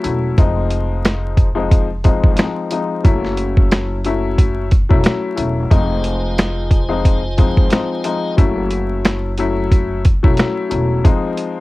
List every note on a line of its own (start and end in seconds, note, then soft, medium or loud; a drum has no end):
0.03 0.34 E1 loud
0.03 0.35 F#3 medium
0.03 0.35 A3 medium
0.03 0.35 C#4 medium
0.03 0.35 E4 medium
0.03 closed hi-hat medium
0.38 2.19 F1 loud
0.38 1.46 F3 loud
0.38 1.46 G#3 medium
0.38 1.47 C4 medium
0.38 1.47 D#4 loud
0.38 kick loud
0.38 closed hi-hat medium
0.70 closed hi-hat medium
1.05 snare loud
1.05 snare medium
1.05 closed hi-hat medium
1.37 kick loud
1.37 closed hi-hat medium
1.55 1.86 F3 loud
1.55 1.86 G#3 medium
1.55 1.87 C4 medium
1.55 1.87 D#4 loud
1.71 kick loud
1.71 closed hi-hat medium
2.04 2.35 F3 medium
2.04 2.36 G#3 medium
2.04 2.36 C4 medium
2.04 2.36 D#4 loud
2.04 kick medium
2.04 closed hi-hat medium
2.24 2.36 G#1 medium
2.24 kick medium
2.37 2.69 F3 medium
2.37 2.69 G#3 medium
2.37 2.69 C4 medium
2.37 2.70 D#4 medium
2.37 snare loud
2.37 snare medium
2.37 closed hi-hat medium
2.71 3.02 F3 medium
2.71 3.02 G#3 medium
2.71 3.03 C4 medium
2.71 3.03 D#4 loud
2.71 closed hi-hat medium
3.04 4.86 F#1 loud
3.04 3.97 F#3 medium
3.04 3.97 A3 medium
3.04 3.98 C#4 medium
3.04 3.98 E4 loud
3.04 kick loud
3.04 closed hi-hat medium
3.25 snare soft
3.37 closed hi-hat medium
3.57 kick loud
3.71 snare loud
3.71 snare medium
3.71 closed hi-hat medium
4.04 4.67 F#3 medium
4.04 4.67 A3 medium
4.04 4.67 C#4 medium
4.04 4.67 E4 loud
4.04 closed hi-hat medium
4.38 kick loud
4.38 closed hi-hat medium
4.71 kick loud
4.71 closed hi-hat medium
4.89 5.03 E1 medium
4.89 5.34 F#3 loud
4.89 5.34 A3 medium
4.89 5.34 C#4 medium
4.89 5.35 E4 loud
4.89 kick medium
5.04 snare loud
5.04 snare medium
5.04 closed hi-hat medium
5.36 5.67 E1 loud
5.36 5.68 F#3 medium
5.36 5.68 A3 medium
5.36 5.68 C#4 medium
5.36 5.68 E4 medium
5.36 closed hi-hat medium
5.71 7.53 F1 loud
5.71 6.79 F3 loud
5.71 6.79 G#3 medium
5.71 6.80 C4 medium
5.71 6.80 D#4 loud
5.71 8.35 F4 medium
5.71 8.36 C5 medium
5.71 8.35 D#5 medium
5.71 8.35 G#5 medium
5.71 kick loud
5.71 closed hi-hat medium
6.04 closed hi-hat medium
6.38 snare loud
6.38 snare medium
6.38 closed hi-hat loud
6.71 kick medium
6.71 closed hi-hat medium
6.89 7.20 F3 loud
6.89 7.20 G#3 medium
6.89 7.20 C4 medium
6.89 7.20 D#4 loud
7.05 kick loud
7.05 closed hi-hat medium
7.37 7.69 F3 medium
7.37 7.69 G#3 medium
7.37 7.69 C4 medium
7.37 7.69 D#4 loud
7.37 kick loud
7.37 closed hi-hat medium
7.57 7.70 G#1 medium
7.57 kick medium
7.70 8.02 F3 medium
7.70 8.02 G#3 medium
7.70 8.03 C4 medium
7.70 8.03 D#4 medium
7.70 snare loud
7.70 snare medium
7.70 closed hi-hat medium
8.04 8.35 F3 medium
8.04 8.36 G#3 medium
8.04 8.36 C4 medium
8.04 8.36 D#4 loud
8.04 closed hi-hat medium
8.37 10.20 F#1 loud
8.37 9.31 F#3 medium
8.37 9.31 A3 medium
8.37 9.31 C#4 medium
8.37 9.31 E4 loud
8.37 kick loud
8.37 closed hi-hat medium
8.71 closed hi-hat medium
9.05 snare loud
9.05 snare medium
9.05 closed hi-hat medium
9.38 10.00 F#3 medium
9.38 10.01 A3 medium
9.38 10.01 C#4 medium
9.38 10.01 E4 loud
9.38 closed hi-hat medium
9.72 kick loud
9.72 closed hi-hat medium
10.05 kick medium
10.05 closed hi-hat medium
10.23 10.36 E1 medium
10.23 10.67 F#3 loud
10.23 10.68 A3 medium
10.23 10.68 C#4 medium
10.23 10.68 E4 loud
10.23 kick loud
10.37 snare loud
10.37 snare medium
10.37 closed hi-hat medium
10.69 11.01 E1 loud
10.69 11.01 F#3 medium
10.69 11.02 A3 medium
10.69 11.02 C#4 medium
10.69 11.02 E4 medium
10.69 closed hi-hat medium
11.04 11.60 F3 loud
11.04 11.60 G#3 medium
11.04 11.60 C4 medium
11.04 11.60 D#4 loud
11.04 kick loud
11.04 closed hi-hat medium
11.37 closed hi-hat medium